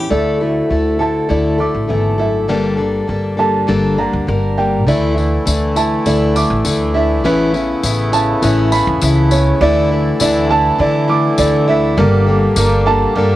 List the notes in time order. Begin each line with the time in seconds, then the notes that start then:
Already playing: A2 C#4 G4
0.10 D2 D3 A3 E4 A4 D5
0.40 A3 E4 F#4 A4
0.69 D2 D3 A3 E4 A4
0.99 D3 A3 E4 A4 A5
1.29 D2 D3 A3 E4 A4 D5
1.58 A3 E4 A4 D6
1.75 A1
1.88 G#1 E2 D3 A3 E4 A4
2.18 F#2 A3 E4 A4 E5
2.48 G1 G2 D3 G3 A#3 D4 A4
2.77 G3 A#3 D4 A4
3.08 G1 G3 A#3 D4 A4
3.37 D3 G3 A#3 D4 A4 A5
3.67 G1 G2 D3 G3 A#3 D4 A4
3.98 D3 G3 A#3 D4 A#5
4.13 D2
4.27 G1 G3 A#3 D4 A#4
4.57 G3 A#3 D4 G5
4.87 D2 D3 E3 A3 D4 E4 D5, tambourine
5.16 A3 D4 E4, tambourine
5.46 D2 D3 A3 D4 E4, tambourine
5.76 A3 D4 E4 A5, tambourine
6.06 D2 D3 A3 D4 E4 D5, tambourine
6.35 A3 D4 E4 D6, tambourine
6.50 A1
6.64 D2 D3 A3 D4 E4, tambourine
6.94 A3 D4 E4 E5
7.24 A1 A2 C#3 E3 B3 C#4 E4 B4, tambourine
7.53 B3 C#4 E4, tambourine
7.83 A1 E3 B3 C#4 E4, tambourine
8.12 B3 C#4 E4 A5, tambourine
8.42 A1 A2 E3 B3 C#4 E4 B4, tambourine
8.72 B3 C#4 E4 B5, tambourine
8.87 E2
9.02 C#2 E3 B3 C#4 E4, tambourine
9.31 B3 C#4 E4 C#5, tambourine
9.61 D2 D3 E3 A3 D4 E4 D5
9.91 A3 D4 E4
10.20 D2 D3 A3 D4 E4 D5, tambourine
10.49 A3 D4 E4 A5
10.78 D3 A3 D4 E4 D5
11.08 A3 D4 E4 D6
11.38 D2 D3 A3 D4 E4 D5, tambourine
11.68 A3 D4 E4 E5
11.97 G1 G2 D3 G3 A#3 D4 G4 A4 A#4
12.27 G3 A#3 D4 A4
12.56 G1 G2 D3 G3 A#3 D4 A4 A#4, tambourine
12.86 G3 A#3 D4 A4 A5
13.15 G2 G3 A#3 D4 A4 A#4